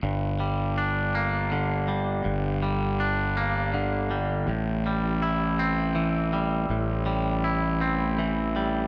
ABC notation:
X:1
M:3/4
L:1/8
Q:1/4=81
K:Gdor
V:1 name="Clean electric guitar" clef=bass
G,, G, D B, D, G, | G,, G, D B, D, G, | A,, G, E C E, G, | A,, G, E C E, G, |]
V:2 name="Fingered electric bass" clef=bass
G,,,6 | G,,,6 | A,,,6 | A,,,6 |]